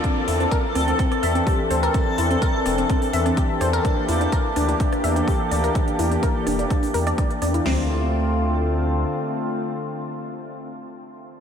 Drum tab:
CC |----------------|----------------|----------------|----------------|
HH |x-oxx-oxxxoxo-ox|x-oxx-oxxooxx-ox|x-oxx-oxxxoxo-ox|xxoxx-oxxooxxxox|
SD |------r--r------|------r----r--r-|------r--r------|------r----r--r-|
FT |----------------|----------------|----------------|----------------|
BD |o---o---o---o---|o---o---o---o---|o---o---o---o---|o---o---o---o---|

CC |x---------------|----------------|
HH |----------------|----------------|
SD |o---------------|----------------|
FT |o---------------|----------------|
BD |----------------|----------------|